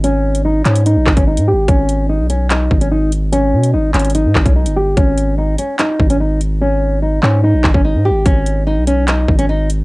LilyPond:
<<
  \new Staff \with { instrumentName = "Nylon-string guitar" } { \time 4/4 \key gis \minor \tempo 4 = 146 cis'4 dis'8 cis'8 dis'8. cis'16 dis'8 g'8 | cis'4 dis'8 cis'8 dis'8. cis'16 dis'8 r8 | cis'4 dis'8 cis'8 dis'8. cis'16 dis'8 g'8 | cis'4 dis'8 cis'8 dis'8. cis'16 r4 |
cis'4 dis'8 cis'8 dis'8. cis'16 dis'8 g'8 | cis'4 dis'8 cis'8 dis'8. cis'16 dis'8 r8 | }
  \new Staff \with { instrumentName = "808-style bass" } { \clef bass \time 4/4 \key gis \minor gis,,4. gis,8. ais,,16 gis,,16 gis,,8 gis,16. gis,,16. | gis,,4~ gis,,16 b,,4~ b,,16 gis,,4.~ | gis,,8 b,8 gis,,8 gis,,8. gis,16 gis,,16 b,,8 g,,8. | gis,,4. r4 gis,,4.~ |
gis,,4. gis,8. ais,,16 gis,,16 gis,,8 gis,16. gis,,16. | gis,,4~ gis,,16 b,,4~ b,,16 gis,,4. | }
  \new DrumStaff \with { instrumentName = "Drums" } \drummode { \time 4/4 hh8. hh16 r8 <hc hh>16 hh16 hh8 <hc bd>16 <hh bd>16 r16 hh8. | <hh bd>8 hh8 r8 hh8 <hc hh>8 bd16 hh16 r8 hh8 | hh8. hh16 r8 <hc hh>32 hh32 hh32 hh32 hh8 <hc bd>16 <hh bd>16 r16 hh8. | <hh bd>8 hh8 r8 hh8 <hc hh>8 bd16 hh16 r8 hh8 |
r4 r8 hc8 r8 <hc bd>16 bd16 r4 | <hh bd>8 hh8 r8 hh8 <hc hh>8 bd16 hh16 r8 hh8 | }
>>